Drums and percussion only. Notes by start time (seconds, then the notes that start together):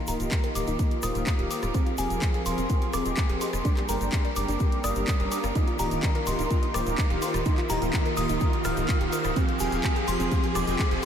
0.07 open hi-hat, shaker
0.20 closed hi-hat, shaker
0.31 kick, clap, closed hi-hat, shaker
0.44 closed hi-hat
0.55 open hi-hat, shaker
0.67 closed hi-hat, shaker
0.79 kick, closed hi-hat, shaker
0.91 closed hi-hat
1.03 cross-stick, open hi-hat, shaker
1.15 closed hi-hat, shaker
1.27 kick, clap, closed hi-hat, shaker
1.39 closed hi-hat
1.51 open hi-hat, shaker
1.63 cross-stick, closed hi-hat, shaker
1.74 kick, closed hi-hat, shaker
1.87 closed hi-hat
1.98 open hi-hat, shaker
2.10 closed hi-hat, shaker
2.22 kick, clap, closed hi-hat, shaker
2.34 closed hi-hat
2.46 open hi-hat, shaker
2.58 closed hi-hat, shaker
2.69 kick, closed hi-hat, shaker
2.82 closed hi-hat
2.93 cross-stick, open hi-hat, shaker
3.05 closed hi-hat, shaker
3.17 kick, clap, closed hi-hat, shaker
3.29 closed hi-hat
3.41 open hi-hat, shaker
3.53 cross-stick, closed hi-hat, shaker
3.65 kick, closed hi-hat, shaker
3.77 clap, closed hi-hat
3.89 open hi-hat, shaker
4.01 closed hi-hat, shaker
4.12 kick, clap, closed hi-hat, shaker
4.25 closed hi-hat
4.36 open hi-hat, shaker
4.49 closed hi-hat, shaker
4.60 kick, closed hi-hat, shaker
4.72 closed hi-hat
4.84 cross-stick, open hi-hat, shaker
4.95 closed hi-hat, shaker
5.07 kick, clap, closed hi-hat, shaker
5.20 closed hi-hat
5.32 open hi-hat, shaker
5.44 cross-stick, closed hi-hat, shaker
5.55 kick, closed hi-hat, shaker
5.68 closed hi-hat
5.79 open hi-hat, shaker
5.91 closed hi-hat, shaker
6.03 kick, clap, closed hi-hat, shaker
6.15 closed hi-hat
6.27 open hi-hat, shaker
6.39 closed hi-hat, shaker
6.51 kick, closed hi-hat, shaker
6.63 closed hi-hat
6.74 cross-stick, open hi-hat, shaker
6.86 closed hi-hat, shaker
6.98 kick, clap, closed hi-hat, shaker
7.10 closed hi-hat
7.22 open hi-hat, shaker
7.34 cross-stick, closed hi-hat, shaker
7.45 kick, closed hi-hat, shaker
7.58 clap, closed hi-hat
7.70 open hi-hat, shaker
7.82 closed hi-hat, shaker
7.93 kick, clap, closed hi-hat, shaker
8.06 closed hi-hat
8.17 open hi-hat, shaker
8.29 closed hi-hat, shaker
8.40 kick, closed hi-hat, shaker
8.53 closed hi-hat
8.64 cross-stick, open hi-hat, shaker
8.77 closed hi-hat, shaker
8.88 kick, clap, closed hi-hat, shaker
9.01 closed hi-hat
9.12 open hi-hat, shaker
9.24 cross-stick, closed hi-hat, shaker
9.36 kick, closed hi-hat, shaker
9.49 closed hi-hat
9.60 open hi-hat, shaker
9.72 closed hi-hat, shaker
9.84 kick, clap, closed hi-hat, shaker
9.96 closed hi-hat
10.08 open hi-hat, shaker
10.20 closed hi-hat, shaker
10.31 kick, closed hi-hat, shaker
10.44 closed hi-hat
10.55 cross-stick, open hi-hat, shaker
10.67 closed hi-hat, shaker
10.79 kick, clap, closed hi-hat, shaker
10.91 closed hi-hat